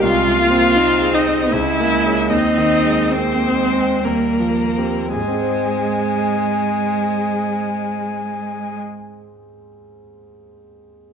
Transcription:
0.03 grand piano C2, cello G#3, viola F4, violin F5
0.27 grand piano C3
0.40 cello A#3
0.51 grand piano C4
0.76 cello C4, grand piano D#4
1.01 grand piano G#4
1.14 viola D#4, violin D#5
1.27 grand piano C5
1.52 grand piano C#2, cello G#3, viola E4, violin E5
1.80 grand piano A#3
2.06 grand piano C#4 G#4
2.31 grand piano D#2, cello C4, viola D#4, violin D#5
2.58 grand piano D#3
2.85 grand piano G#3
3.11 cello A#3, viola C4, grand piano C4, violin C5
3.43 grand piano G#4
3.56 cello G#3
3.73 grand piano C4
4.03 grand piano D#2, cello G3, viola A#3, violin A#4
4.40 grand piano F3
4.77 grand piano C4 G4
5.12 grand piano G#2, cello G#3, viola G#3, violin G#5
5.21 grand piano G#3
5.28 grand piano C4
5.34 grand piano G#4
5.42 grand piano C5

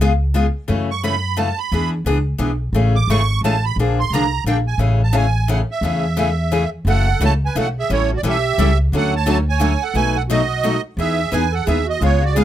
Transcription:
Already playing: upright bass C#2
0.01 steel-string acoustic guitar C#3 G#3 B3 F4 G#4
0.34 steel-string acoustic guitar C#3 G#3 B3 F4 G#4
0.68 upright bass F#2, steel-string acoustic guitar C#3 E3 A3 C#4 F#4
0.91 accordion C#6
1.03 steel-string acoustic guitar C#3 E3 A3 C#4 F#4, accordion B5
1.37 steel-string acoustic guitar C#3 E3 A3 C#4 F#4, accordion A5
1.59 accordion B5
1.72 upright bass E2, steel-string acoustic guitar E3 B3 D4 G#4
2.05 upright bass C#2, steel-string acoustic guitar E3 B3 D4 G#4
2.38 upright bass B1, steel-string acoustic guitar E3 B3 D4 G#4
2.73 upright bass A1, steel-string acoustic guitar C#3 E3 A3 C#4 G#4
2.95 accordion D6
3.07 upright bass G#1, steel-string acoustic guitar C#3 E3 A3 C#4 G#4, accordion C#6
3.41 upright bass A1, steel-string acoustic guitar C#3 E3 A3, accordion A5
3.45 steel-string acoustic guitar C#4 G#4
3.65 accordion B5
3.76 upright bass A#1, steel-string acoustic guitar D3 F3 A#3 D4 G#4
4.00 accordion C6
4.10 upright bass C2, steel-string acoustic guitar D3 F3 A#3, accordion A#5
4.15 steel-string acoustic guitar D4 G#4
4.44 upright bass A#1, steel-string acoustic guitar D3 F3 A#3 D4 G#4, accordion G5
4.67 accordion G#5
4.78 upright bass A1, steel-string acoustic guitar C#3 E3 A3 C#4 G#4
5.03 accordion A5
5.13 steel-string acoustic guitar C#3 E3 A3 C#4 G#4
5.18 accordion G#5
5.48 steel-string acoustic guitar C#3 E3 A3 C#4 G#4, accordion F#5
5.71 accordion E5
5.81 upright bass E2, steel-string acoustic guitar C#3 E3 A3 C#4 G#4
6.17 steel-string acoustic guitar C#3 E3 A3 C#4 G#4
6.52 steel-string acoustic guitar C#3 E3 A3 C#4 G#4
6.85 upright bass F#1, steel-string acoustic guitar C#3 E3 A3 C#4 F#4
6.89 accordion A4 F#5
7.20 upright bass C#2, steel-string acoustic guitar C#3 E3 A3 C#4 F#4, accordion C#5
7.25 accordion A5
7.46 accordion B4 G#5
7.55 upright bass B1, steel-string acoustic guitar C#3 E3 A3 C#4 F#4, accordion A4
7.60 accordion F#5
7.79 accordion G#4 E5
7.90 upright bass A1, steel-string acoustic guitar E3 G3 C#4 E4 A4, accordion E4 C#5
8.13 accordion F#4 D5
8.23 upright bass B1, steel-string acoustic guitar E3 G3 C#4 E4 A4
8.27 accordion G4 E5
8.58 upright bass C#2, steel-string acoustic guitar E3 G3 C#4 E4 A4
8.92 upright bass D2, steel-string acoustic guitar D3 F#3 A3 C#4 F#4, accordion A4
8.97 accordion F#5
9.16 accordion C#5 A5
9.26 steel-string acoustic guitar D3 F#3 A3 C#4 F#4, accordion A5
9.30 accordion C#5
9.49 accordion C#5 G#5
9.60 steel-string acoustic guitar D3 F#3 A3 C#4 F#4
9.82 accordion A4 F#5
9.94 upright bass B1, steel-string acoustic guitar B2 F#3 A3 D#4 F#4, accordion B4 G#5
10.17 accordion A4 F#5
10.28 steel-string acoustic guitar B2 F#3 A3 D#4 F#4, accordion F#4 D#5
10.63 steel-string acoustic guitar B2 F#3 A3 D#4 F#4
10.97 upright bass E2, steel-string acoustic guitar E3 B3 D#4 G#4, accordion G#4 E5
11.32 upright bass E2, steel-string acoustic guitar E3 B3 D#4 G#4, accordion B4 G#5
11.52 accordion A4 F#5
11.66 upright bass D#2, steel-string acoustic guitar E3 B3 D#4 G#4, accordion G#4 E5
11.85 accordion F#4
11.90 accordion D#5
11.99 upright bass C#2, steel-string acoustic guitar C#3 G#3 B3 F4 G#4, accordion F4
12.04 accordion C#5
12.21 accordion F#4
12.25 accordion D5
12.35 steel-string acoustic guitar C#3 G#3 B3 F4 G#4, accordion G#4 F5

